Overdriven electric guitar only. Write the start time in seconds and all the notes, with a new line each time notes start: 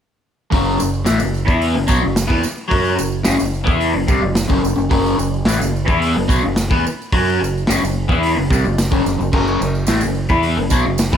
0.51 F#2 C#3 F#3
0.78 F#2 C#3
1.05 A2 E3
1.19 F#2 C#3
1.46 E3 B3 E4
1.74 F#2 C#3
1.87 B2 F#3
2.01 F#2 C#3
2.27 E3 B3
2.42 muted overdriven electric guitar stroke
2.68 F#3 C#4 F#4
2.96 F#2 C#3
3.23 F#2 C#3
3.37 F#2 C#3
3.64 E3 B3 E4
3.93 F#2 C#3
4.07 C3 G3
4.21 F#2 C#3
4.48 F#2 C#3
4.62 F#2 C#3
4.76 F#2 C#3
4.90 F#2 C#3 F#3
5.16 F#2 C#3
5.46 A2 E3
5.59 F#2 C#3
5.86 E3 B3 E4
6.15 F#2 C#3
6.28 B2 F#3
6.43 F#2 C#3
6.70 E3 B3
6.85 muted overdriven electric guitar stroke
7.13 F#3 C#4 F#4
7.40 F#2 C#3
7.68 F#2 C#3
7.81 F#2 C#3
8.08 E3 B3 E4
8.35 F#2 C#3
8.50 C3 G3
8.64 F#2 C#3
8.91 F#2 C#3
9.05 F#2 C#3
9.19 F#2 C#3
9.32 F#2 C#3 F#3
9.60 F#2 C#3
9.87 A2 E3
10.01 F#2 C#3
10.29 E3 B3 E4
10.57 F#2 C#3
10.70 B2 F#3
10.85 F#2 C#3
11.12 E3 B3